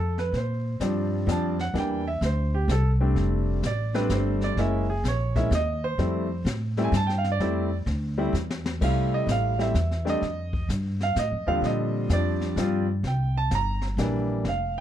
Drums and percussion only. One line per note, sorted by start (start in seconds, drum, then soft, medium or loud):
0.18 snare soft
0.34 brush sweep medium
0.34 snare soft
0.80 snare medium
0.80 hi-hat pedal medium
1.28 snare medium
1.28 hi-hat pedal soft
1.59 snare soft
1.75 brush sweep soft
1.75 snare soft
2.22 snare medium
2.22 hi-hat pedal soft
2.69 snare medium
2.69 hi-hat pedal medium
3.16 brush sweep soft
3.16 snare soft
3.63 snare medium
3.63 hi-hat pedal medium
3.94 snare soft
4.10 snare medium
4.10 hi-hat pedal medium
4.41 snare soft
4.57 brush sweep soft
4.57 snare soft
5.05 snare medium
5.05 hi-hat pedal medium
5.36 kick medium
5.36 snare soft
5.52 snare medium
5.52 hi-hat pedal medium
5.99 brush sweep soft
5.99 snare soft
6.46 snare medium
6.46 hi-hat pedal medium
6.77 snare soft
6.93 snare medium
6.93 hi-hat pedal medium
7.09 snare soft
7.24 snare soft
7.40 brush sweep soft
7.40 snare soft
7.87 snare soft
8.34 snare soft
8.34 hi-hat pedal medium
8.50 snare medium
8.66 snare medium
8.81 brush sweep soft
8.81 kick medium
8.81 snare soft
8.81 crash medium
9.28 snare medium
9.28 hi-hat pedal medium
9.59 snare soft
9.75 snare medium
9.75 hi-hat pedal medium
9.91 snare soft
10.07 snare soft
10.22 brush sweep soft
10.22 snare soft
10.53 kick medium
10.69 snare medium
10.69 hi-hat pedal medium
11.00 snare soft
11.16 snare medium
11.16 hi-hat pedal medium
11.64 brush sweep soft
11.64 snare soft
12.10 snare medium
12.10 hi-hat pedal medium
12.41 snare soft
12.57 snare medium
12.57 hi-hat pedal medium
13.04 brush sweep soft
13.04 snare soft
13.51 snare medium
13.51 hi-hat pedal medium
13.82 snare soft
13.98 snare medium
13.98 hi-hat pedal soft
14.45 brush sweep medium
14.45 snare soft